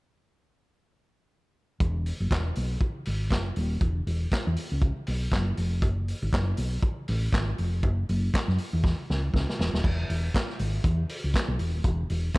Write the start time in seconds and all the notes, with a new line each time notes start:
1.80 E1, kick, closed hi-hat
2.06 open hi-hat
2.20 F#1
2.31 E1, kick, snare, clap, closed hi-hat
2.55 B1, open hi-hat
2.80 kick, closed hi-hat
3.05 G#1, open hi-hat
3.30 F#1, kick, snare, clap, closed hi-hat
3.56 D#1, open hi-hat
3.81 E1, kick, closed hi-hat
4.07 E1, open hi-hat
4.31 muted fingered electric bass stroke, kick, snare, clap, closed hi-hat
4.47 E2
4.56 open hi-hat
4.72 C#2
4.82 kick, closed hi-hat
5.07 B1, open hi-hat
5.32 F#1, kick, snare, clap, closed hi-hat
5.57 F1, open hi-hat
5.82 F#1, kick, closed hi-hat
6.08 open hi-hat
6.22 G#1
6.32 F#1, kick, snare, clap, closed hi-hat
6.57 B1, open hi-hat
6.83 kick, closed hi-hat
7.08 A1, open hi-hat
7.33 G#1, kick, snare, clap, closed hi-hat
7.58 F1, open hi-hat
7.83 F#1, kick, closed hi-hat
8.09 F#1, open hi-hat
8.34 kick, snare, clap, closed hi-hat
8.48 F#2, snare
8.58 open hi-hat
8.73 E2
8.84 kick, snare
9.10 C#2, snare
9.34 C#2, kick, snare
9.49 snare
9.59 E1, snare
9.73 D#1, snare
9.84 E1, kick, crash
10.10 E1, open hi-hat
10.34 kick, snare, clap, closed hi-hat
10.50 snare
10.59 G#1, open hi-hat
10.84 E2, kick, closed hi-hat
11.09 open hi-hat
11.24 C#2
11.34 kick, snare, clap, closed hi-hat
11.48 B1
11.59 E1, open hi-hat
11.74 D#1
11.84 E1, kick, closed hi-hat
12.10 E1, open hi-hat
12.34 muted fingered electric bass stroke, kick, closed hi-hat